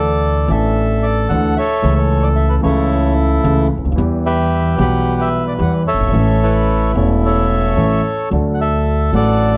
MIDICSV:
0, 0, Header, 1, 4, 480
1, 0, Start_track
1, 0, Key_signature, 2, "major"
1, 0, Tempo, 536673
1, 1644, Time_signature, 4, 2, 24, 8
1, 4995, Tempo, 544959
1, 8507, End_track
2, 0, Start_track
2, 0, Title_t, "Bandoneon"
2, 0, Program_c, 0, 23
2, 0, Note_on_c, 0, 69, 49
2, 0, Note_on_c, 0, 74, 72
2, 450, Note_off_c, 0, 69, 0
2, 450, Note_on_c, 0, 76, 73
2, 461, Note_off_c, 0, 74, 0
2, 464, Note_on_c, 0, 69, 53
2, 918, Note_on_c, 0, 74, 75
2, 944, Note_off_c, 0, 76, 0
2, 1145, Note_off_c, 0, 74, 0
2, 1156, Note_on_c, 0, 78, 71
2, 1382, Note_off_c, 0, 69, 0
2, 1401, Note_on_c, 0, 76, 84
2, 1408, Note_off_c, 0, 78, 0
2, 1420, Note_on_c, 0, 73, 56
2, 1423, Note_on_c, 0, 69, 59
2, 1738, Note_off_c, 0, 73, 0
2, 1751, Note_on_c, 0, 73, 64
2, 1771, Note_off_c, 0, 76, 0
2, 1992, Note_on_c, 0, 74, 75
2, 2002, Note_off_c, 0, 73, 0
2, 2047, Note_off_c, 0, 74, 0
2, 2110, Note_on_c, 0, 76, 75
2, 2225, Note_off_c, 0, 76, 0
2, 2230, Note_on_c, 0, 71, 66
2, 2286, Note_off_c, 0, 71, 0
2, 2331, Note_off_c, 0, 69, 0
2, 2354, Note_on_c, 0, 73, 64
2, 2367, Note_on_c, 0, 69, 50
2, 2369, Note_on_c, 0, 64, 45
2, 2801, Note_off_c, 0, 73, 0
2, 3285, Note_off_c, 0, 69, 0
2, 3286, Note_off_c, 0, 64, 0
2, 3810, Note_on_c, 0, 76, 84
2, 3811, Note_on_c, 0, 67, 60
2, 3812, Note_on_c, 0, 71, 61
2, 4251, Note_off_c, 0, 76, 0
2, 4281, Note_off_c, 0, 71, 0
2, 4294, Note_on_c, 0, 71, 63
2, 4298, Note_on_c, 0, 78, 84
2, 4658, Note_off_c, 0, 78, 0
2, 4662, Note_on_c, 0, 76, 83
2, 4728, Note_off_c, 0, 67, 0
2, 4873, Note_off_c, 0, 76, 0
2, 4901, Note_on_c, 0, 74, 65
2, 4950, Note_off_c, 0, 74, 0
2, 5023, Note_on_c, 0, 78, 71
2, 5124, Note_off_c, 0, 78, 0
2, 5208, Note_off_c, 0, 71, 0
2, 5250, Note_on_c, 0, 73, 62
2, 5251, Note_on_c, 0, 69, 62
2, 5253, Note_on_c, 0, 76, 83
2, 5737, Note_off_c, 0, 76, 0
2, 5738, Note_on_c, 0, 64, 52
2, 5742, Note_on_c, 0, 71, 73
2, 6168, Note_off_c, 0, 69, 0
2, 6168, Note_off_c, 0, 73, 0
2, 6177, Note_off_c, 0, 71, 0
2, 6217, Note_on_c, 0, 73, 55
2, 6321, Note_off_c, 0, 73, 0
2, 6463, Note_on_c, 0, 73, 54
2, 6464, Note_on_c, 0, 76, 73
2, 6466, Note_on_c, 0, 69, 54
2, 6655, Note_off_c, 0, 64, 0
2, 7138, Note_off_c, 0, 76, 0
2, 7378, Note_off_c, 0, 73, 0
2, 7379, Note_off_c, 0, 69, 0
2, 7601, Note_on_c, 0, 78, 52
2, 7651, Note_off_c, 0, 78, 0
2, 7660, Note_on_c, 0, 76, 78
2, 7661, Note_on_c, 0, 69, 57
2, 8097, Note_off_c, 0, 76, 0
2, 8128, Note_off_c, 0, 69, 0
2, 8129, Note_on_c, 0, 78, 87
2, 8141, Note_on_c, 0, 69, 58
2, 8141, Note_on_c, 0, 74, 61
2, 8456, Note_off_c, 0, 78, 0
2, 8507, Note_off_c, 0, 69, 0
2, 8507, Note_off_c, 0, 74, 0
2, 8507, End_track
3, 0, Start_track
3, 0, Title_t, "Grand piano"
3, 0, Program_c, 1, 0
3, 0, Note_on_c, 1, 38, 64
3, 0, Note_on_c, 1, 50, 67
3, 0, Note_on_c, 1, 52, 52
3, 0, Note_on_c, 1, 57, 55
3, 0, Note_on_c, 1, 62, 50
3, 0, Note_on_c, 1, 69, 62
3, 396, Note_off_c, 1, 52, 0
3, 401, Note_off_c, 1, 57, 0
3, 403, Note_off_c, 1, 50, 0
3, 405, Note_off_c, 1, 38, 0
3, 407, Note_off_c, 1, 62, 0
3, 413, Note_off_c, 1, 69, 0
3, 427, Note_on_c, 1, 52, 53
3, 439, Note_on_c, 1, 57, 53
3, 444, Note_on_c, 1, 33, 72
3, 444, Note_on_c, 1, 45, 67
3, 450, Note_on_c, 1, 62, 54
3, 460, Note_on_c, 1, 69, 65
3, 1123, Note_off_c, 1, 52, 0
3, 1130, Note_off_c, 1, 57, 0
3, 1132, Note_off_c, 1, 33, 0
3, 1132, Note_off_c, 1, 45, 0
3, 1135, Note_off_c, 1, 62, 0
3, 1140, Note_off_c, 1, 69, 0
3, 1169, Note_on_c, 1, 57, 53
3, 1170, Note_on_c, 1, 50, 68
3, 1170, Note_on_c, 1, 52, 53
3, 1171, Note_on_c, 1, 38, 68
3, 1171, Note_on_c, 1, 62, 52
3, 1174, Note_on_c, 1, 69, 63
3, 1369, Note_off_c, 1, 50, 0
3, 1369, Note_off_c, 1, 52, 0
3, 1369, Note_off_c, 1, 57, 0
3, 1370, Note_off_c, 1, 38, 0
3, 1370, Note_off_c, 1, 62, 0
3, 1371, Note_off_c, 1, 69, 0
3, 1629, Note_on_c, 1, 52, 57
3, 1638, Note_on_c, 1, 57, 56
3, 1643, Note_on_c, 1, 49, 64
3, 1645, Note_on_c, 1, 37, 63
3, 1650, Note_on_c, 1, 61, 49
3, 1663, Note_on_c, 1, 69, 65
3, 2315, Note_off_c, 1, 52, 0
3, 2319, Note_off_c, 1, 57, 0
3, 2322, Note_off_c, 1, 49, 0
3, 2323, Note_off_c, 1, 37, 0
3, 2325, Note_off_c, 1, 61, 0
3, 2332, Note_off_c, 1, 69, 0
3, 2335, Note_on_c, 1, 52, 61
3, 2343, Note_on_c, 1, 57, 56
3, 2353, Note_on_c, 1, 37, 77
3, 2353, Note_on_c, 1, 49, 70
3, 2356, Note_on_c, 1, 61, 53
3, 2372, Note_on_c, 1, 69, 67
3, 3029, Note_off_c, 1, 52, 0
3, 3033, Note_off_c, 1, 57, 0
3, 3038, Note_off_c, 1, 37, 0
3, 3038, Note_off_c, 1, 49, 0
3, 3039, Note_off_c, 1, 61, 0
3, 3047, Note_off_c, 1, 69, 0
3, 3072, Note_on_c, 1, 52, 58
3, 3073, Note_on_c, 1, 37, 68
3, 3075, Note_on_c, 1, 61, 47
3, 3075, Note_on_c, 1, 69, 64
3, 3076, Note_on_c, 1, 49, 67
3, 3076, Note_on_c, 1, 57, 55
3, 3275, Note_off_c, 1, 52, 0
3, 3276, Note_off_c, 1, 37, 0
3, 3277, Note_off_c, 1, 49, 0
3, 3277, Note_off_c, 1, 57, 0
3, 3277, Note_off_c, 1, 61, 0
3, 3277, Note_off_c, 1, 69, 0
3, 3383, Note_on_c, 1, 37, 42
3, 3437, Note_on_c, 1, 38, 50
3, 3440, Note_off_c, 1, 37, 0
3, 3494, Note_on_c, 1, 39, 55
3, 3497, Note_off_c, 1, 38, 0
3, 3540, Note_on_c, 1, 52, 72
3, 3552, Note_on_c, 1, 55, 57
3, 3555, Note_off_c, 1, 39, 0
3, 3560, Note_on_c, 1, 40, 64
3, 3567, Note_on_c, 1, 59, 54
3, 3578, Note_on_c, 1, 67, 67
3, 4239, Note_off_c, 1, 55, 0
3, 4242, Note_off_c, 1, 52, 0
3, 4243, Note_off_c, 1, 40, 0
3, 4247, Note_off_c, 1, 59, 0
3, 4252, Note_off_c, 1, 67, 0
3, 4259, Note_on_c, 1, 52, 61
3, 4274, Note_on_c, 1, 55, 59
3, 4278, Note_on_c, 1, 35, 72
3, 4279, Note_on_c, 1, 47, 76
3, 4281, Note_on_c, 1, 59, 55
3, 4294, Note_on_c, 1, 67, 65
3, 4952, Note_off_c, 1, 52, 0
3, 4960, Note_off_c, 1, 55, 0
3, 4962, Note_off_c, 1, 35, 0
3, 4962, Note_off_c, 1, 47, 0
3, 4964, Note_off_c, 1, 59, 0
3, 4970, Note_off_c, 1, 67, 0
3, 4995, Note_on_c, 1, 52, 69
3, 4998, Note_on_c, 1, 59, 50
3, 4999, Note_on_c, 1, 55, 54
3, 5000, Note_on_c, 1, 40, 68
3, 5002, Note_on_c, 1, 67, 63
3, 5197, Note_off_c, 1, 59, 0
3, 5198, Note_off_c, 1, 40, 0
3, 5198, Note_off_c, 1, 52, 0
3, 5198, Note_off_c, 1, 55, 0
3, 5199, Note_off_c, 1, 67, 0
3, 5300, Note_on_c, 1, 30, 43
3, 5356, Note_on_c, 1, 31, 47
3, 5357, Note_off_c, 1, 30, 0
3, 5415, Note_off_c, 1, 31, 0
3, 5417, Note_on_c, 1, 32, 58
3, 5459, Note_on_c, 1, 52, 63
3, 5475, Note_on_c, 1, 57, 50
3, 5476, Note_off_c, 1, 32, 0
3, 5477, Note_on_c, 1, 33, 67
3, 5478, Note_on_c, 1, 45, 70
3, 5483, Note_on_c, 1, 61, 55
3, 5495, Note_on_c, 1, 69, 63
3, 6152, Note_off_c, 1, 52, 0
3, 6160, Note_off_c, 1, 57, 0
3, 6161, Note_off_c, 1, 33, 0
3, 6161, Note_off_c, 1, 45, 0
3, 6164, Note_off_c, 1, 61, 0
3, 6170, Note_off_c, 1, 69, 0
3, 6183, Note_on_c, 1, 52, 59
3, 6194, Note_on_c, 1, 57, 51
3, 6200, Note_on_c, 1, 28, 67
3, 6201, Note_on_c, 1, 40, 71
3, 6206, Note_on_c, 1, 61, 55
3, 6220, Note_on_c, 1, 69, 67
3, 6877, Note_off_c, 1, 52, 0
3, 6882, Note_off_c, 1, 57, 0
3, 6885, Note_off_c, 1, 28, 0
3, 6886, Note_off_c, 1, 40, 0
3, 6889, Note_off_c, 1, 61, 0
3, 6895, Note_off_c, 1, 69, 0
3, 6917, Note_on_c, 1, 45, 61
3, 6917, Note_on_c, 1, 57, 48
3, 6919, Note_on_c, 1, 52, 55
3, 6920, Note_on_c, 1, 33, 61
3, 6921, Note_on_c, 1, 61, 51
3, 6922, Note_on_c, 1, 69, 61
3, 7121, Note_off_c, 1, 45, 0
3, 7121, Note_off_c, 1, 52, 0
3, 7121, Note_off_c, 1, 57, 0
3, 7122, Note_off_c, 1, 33, 0
3, 7122, Note_off_c, 1, 61, 0
3, 7123, Note_off_c, 1, 69, 0
3, 7388, Note_on_c, 1, 54, 55
3, 7398, Note_on_c, 1, 57, 45
3, 7405, Note_on_c, 1, 50, 60
3, 7408, Note_on_c, 1, 38, 66
3, 7413, Note_on_c, 1, 62, 49
3, 7423, Note_on_c, 1, 69, 58
3, 8079, Note_off_c, 1, 54, 0
3, 8083, Note_off_c, 1, 57, 0
3, 8087, Note_off_c, 1, 50, 0
3, 8088, Note_off_c, 1, 38, 0
3, 8091, Note_off_c, 1, 62, 0
3, 8096, Note_off_c, 1, 69, 0
3, 8114, Note_on_c, 1, 54, 58
3, 8125, Note_on_c, 1, 57, 49
3, 8131, Note_on_c, 1, 33, 69
3, 8131, Note_on_c, 1, 45, 72
3, 8138, Note_on_c, 1, 62, 52
3, 8150, Note_on_c, 1, 69, 62
3, 8507, Note_off_c, 1, 33, 0
3, 8507, Note_off_c, 1, 45, 0
3, 8507, Note_off_c, 1, 54, 0
3, 8507, Note_off_c, 1, 57, 0
3, 8507, Note_off_c, 1, 62, 0
3, 8507, Note_off_c, 1, 69, 0
3, 8507, End_track
4, 0, Start_track
4, 0, Title_t, "Upright bass"
4, 0, Program_c, 2, 32
4, 0, Note_on_c, 2, 38, 74
4, 400, Note_off_c, 2, 38, 0
4, 431, Note_on_c, 2, 33, 67
4, 1126, Note_off_c, 2, 33, 0
4, 1165, Note_on_c, 2, 38, 66
4, 1367, Note_off_c, 2, 38, 0
4, 1642, Note_on_c, 2, 37, 78
4, 2321, Note_off_c, 2, 37, 0
4, 2363, Note_on_c, 2, 37, 68
4, 3043, Note_off_c, 2, 37, 0
4, 3081, Note_on_c, 2, 37, 78
4, 3280, Note_off_c, 2, 37, 0
4, 3377, Note_on_c, 2, 37, 41
4, 3437, Note_off_c, 2, 37, 0
4, 3443, Note_on_c, 2, 38, 47
4, 3500, Note_off_c, 2, 38, 0
4, 3505, Note_on_c, 2, 39, 59
4, 3555, Note_off_c, 2, 39, 0
4, 3560, Note_on_c, 2, 40, 87
4, 4243, Note_off_c, 2, 40, 0
4, 4278, Note_on_c, 2, 35, 75
4, 4962, Note_off_c, 2, 35, 0
4, 5001, Note_on_c, 2, 40, 69
4, 5199, Note_off_c, 2, 40, 0
4, 5301, Note_on_c, 2, 30, 39
4, 5353, Note_off_c, 2, 30, 0
4, 5359, Note_on_c, 2, 31, 49
4, 5416, Note_off_c, 2, 31, 0
4, 5424, Note_on_c, 2, 32, 63
4, 5479, Note_off_c, 2, 32, 0
4, 5484, Note_on_c, 2, 33, 80
4, 6164, Note_off_c, 2, 33, 0
4, 6201, Note_on_c, 2, 28, 74
4, 6886, Note_off_c, 2, 28, 0
4, 6919, Note_on_c, 2, 33, 68
4, 7122, Note_off_c, 2, 33, 0
4, 7398, Note_on_c, 2, 38, 76
4, 8084, Note_off_c, 2, 38, 0
4, 8117, Note_on_c, 2, 33, 75
4, 8507, Note_off_c, 2, 33, 0
4, 8507, End_track
0, 0, End_of_file